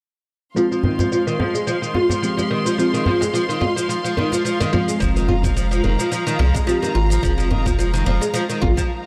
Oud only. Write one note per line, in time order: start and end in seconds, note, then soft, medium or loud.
0.56 0.65 F3 medium
0.71 0.83 F3 medium
0.84 0.99 D#3 medium
0.99 1.11 F3 medium
1.12 1.27 F3 medium
1.27 1.39 D#3 medium
1.39 1.53 F3 medium
1.54 1.67 G#3 medium
1.67 1.76 F3 medium
1.82 1.94 D#3 medium
1.95 2.04 F4 medium
2.10 2.21 F3 medium
2.22 2.31 F3 medium
2.37 2.49 F3 medium
2.51 2.65 D#3 medium
2.66 2.77 F3 medium
2.78 2.93 F3 medium
2.94 3.05 D#3 medium
3.06 3.20 F3 medium
3.21 3.33 G#3 medium
3.34 3.43 F3 medium
3.49 3.61 D#3 medium
3.61 3.70 F4 medium
3.76 3.88 F3 medium
3.89 3.98 F3 medium
4.04 4.16 F3 medium
4.17 4.32 D#3 medium
4.32 4.44 F3 medium
4.45 4.60 F3 medium
4.60 4.72 D#3 medium
4.73 4.87 F3 medium
4.88 5.00 G#3 medium
5.00 5.09 F3 medium
5.16 5.28 D#3 medium
5.29 5.37 F4 medium
5.44 5.55 F3 medium
5.57 5.65 F3 medium
5.71 5.83 F3 medium
5.84 5.99 D#3 medium
5.99 6.10 F3 medium
6.12 6.26 F3 medium
6.27 6.38 D#3 medium
6.39 6.53 F3 medium
6.54 6.67 G#3 medium
6.67 6.76 F3 medium
6.82 6.94 D#3 medium
6.95 7.04 F4 medium
7.10 7.22 F3 medium
7.23 7.32 F3 medium
7.38 7.49 F3 medium
7.51 7.65 D#3 medium
7.66 7.77 F3 medium
7.79 7.93 F3 medium
7.94 8.05 D#3 medium
8.06 8.20 F3 loud
8.21 8.34 G#3 medium
8.34 8.43 F3 loud
8.49 8.61 D#3 medium
8.62 8.71 F4 medium
8.77 8.89 F3 medium